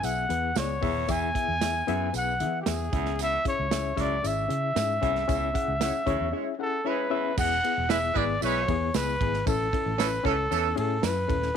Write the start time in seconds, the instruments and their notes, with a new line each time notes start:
0.03 fingered electric bass B1, reed electric piano B3 E4 G#4 E5, trumpet F#5, closed hi-hat, tambourine
0.29 fingered electric bass E2, reed electric piano B3 E4 G#4 B4, closed hi-hat
0.55 fingered electric bass C#2, reed electric piano B3 E4 G#4 D5, trumpet C#5, snare, closed hi-hat, tambourine
0.81 fingered electric bass D#1, baritone saxophone E2, reed electric piano B3 E4 G#4 E5, kick, open hi-hat
1.08 fingered electric bass E2, baritone saxophone E2, reed electric piano B3 E4 G#4 E5, trumpet G#5, kick, closed hi-hat, tambourine
1.34 reed electric piano B3 E4 G#4 E5, kick, closed hi-hat
1.48 fingered electric bass E2
1.60 reed electric piano B3 E4 G#4 E5, snare, closed hi-hat, tambourine
1.87 baritone saxophone F#2, fingered electric bass F#2, reed electric piano B3 E4 G#4 E5, closed hi-hat
2.13 fingered electric bass B1, reed electric piano B3 E4 G#4 B4, trumpet F#5, closed hi-hat, tambourine
2.39 fingered electric bass E3, reed electric piano B3 E4 G#4 E5, closed hi-hat
2.61 trumpet G4
2.66 fingered electric bass E2, reed electric piano B3 E4 G#4 E5, trumpet G#4, snare, closed hi-hat, tambourine
2.92 fingered electric bass C#2, baritone saxophone E2, reed electric piano C#4 E4 G#4 E5, kick, closed hi-hat
3.06 snare
3.19 baritone saxophone E2, trumpet E5, closed hi-hat, tambourine
3.45 reed electric piano C#4 E4 G#4 E5, trumpet C#5, kick, closed hi-hat
3.60 fingered electric bass C#2
3.71 reed electric piano C#4 E4 G#4 E5, snare, closed hi-hat, tambourine
3.96 fingered electric bass C#2, baritone saxophone F#2, reed electric piano C#4 E4 G#4 E5, kick, snare, closed hi-hat
4.01 trumpet D5
4.22 fingered electric bass G#1, reed electric piano C#4 E4 G#4 E5, closed hi-hat, tambourine
4.27 trumpet E5
4.48 fingered electric bass C#3, reed electric piano C#4 E4 G#4 E5, closed hi-hat
4.75 fingered electric bass G#2, reed electric piano C#4 E4 G#4 E5, snare, closed hi-hat, tambourine
5.02 fingered electric bass C2, baritone saxophone E2, reed electric piano C#4 E4 G#4 E5, kick, closed hi-hat
5.15 snare
5.28 fingered electric bass C#2, baritone saxophone E2, reed electric piano C#4 E4 G#4 E5, kick, closed hi-hat, tambourine
5.54 reed electric piano C#4 E4 G#4 F#5, kick, closed hi-hat
5.68 fingered electric bass C#2
5.80 horn section G#3 E4 C#5, reed electric piano C#4 E4 G#4 F#5, snare, closed hi-hat, tambourine
6.06 fingered electric bass D2, baritone saxophone F#2, horn section G#3 E4 C#5, reed electric piano C#4 E4 G#4 C#5, kick, closed hi-hat
6.21 fingered electric bass E2
6.32 horn section G#3 E4 C#5, reed electric piano C#4 E4 G#4 E5
6.59 reed electric piano C#4 E4 G#4 F#5, trumpet A4
6.84 horn section G#3 E4 C#5, reed electric piano C#4 E4 G#4 E5, trumpet B4
7.10 baritone saxophone E2, reed electric piano C#4 E4 G#4 E5
7.37 fingered electric bass E1, reed electric piano B3 E4 G#4, trumpet F#5, kick, crash, tambourine
7.64 reed electric piano B3 E4 G#4, ride
7.78 fingered electric bass E1
7.89 horn section G#3 E4 B4, reed electric piano B3 E4 G#4, trumpet E5, snare, ride, tambourine
8.14 fingered electric bass G#1, horn section G#3 E4 B4, reed electric piano B3 E4 G#4, trumpet D5, kick, ride
8.41 fingered electric bass B1, horn section G#3 E4 B4, reed electric piano B3 E4 G#4, trumpet C#5, ride, tambourine
8.68 fingered electric bass E2, reed electric piano B3 E4 G#4, kick, ride
8.94 fingered electric bass C#2, reed electric piano B3 E4 G#4, trumpet B4, snare, ride, tambourine
9.21 fingered electric bass G#1, reed electric piano B3 E4 G#4, kick, ride
9.34 snare
9.46 fingered electric bass A1, reed electric piano C#4 E4 A4, trumpet A4, kick, ride, tambourine
9.73 reed electric piano C#4 E4 A4, kick, ride
9.86 fingered electric bass A1
9.98 horn section E3 C#4 A4, reed electric piano C#4 E4 A4, trumpet B4, snare, ride, tambourine
10.23 fingered electric bass C#2, horn section E3 C#4 A4, reed electric piano C#4 E4 A4, trumpet A4, kick, snare, ride
10.51 fingered electric bass E2, horn section E3 C#4 A4, reed electric piano C#4 E4 A4, ride, tambourine
10.76 fingered electric bass A2, reed electric piano C#4 E4 G#4, trumpet A4, ride
11.01 fingered electric bass F#2, reed electric piano C#4 E4 B4, trumpet B4, snare, ride, tambourine
11.28 fingered electric bass D#1, reed electric piano C#4 E4 A4, kick, ride
11.42 snare